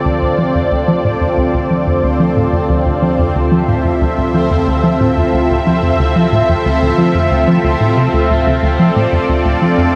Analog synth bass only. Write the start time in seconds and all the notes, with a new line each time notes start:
0.05 D2
0.22 D2
0.38 F3
0.55 F2
0.71 D2
0.88 F3
1.05 A2
1.21 F2
1.38 D2
1.54 D2
1.71 F3
1.87 F2
2.03 D2
2.20 F3
2.37 A2
2.53 F2
2.69 D2
2.86 D2
3.02 F3
3.19 F2
3.35 D2
3.52 F3
3.68 A2
3.85 F2
4.01 D2
4.18 D2
4.34 F3
4.51 F2
4.67 D2
4.84 F3
5.01 A2
5.17 F2
5.34 D2
5.50 D2
5.67 F3
5.83 F2
6.00 D2
6.16 F3
6.33 A2
6.49 F2
6.66 D2
6.82 D2
6.98 F3
7.15 F2
7.31 D2
7.48 F3
7.64 D2
7.81 A2
7.97 C3
8.14 D2
8.30 D2
8.47 D2
8.63 D2
8.79 F3
8.96 A2
9.12 F2
9.29 D2
9.45 D2
9.62 F3
9.78 F2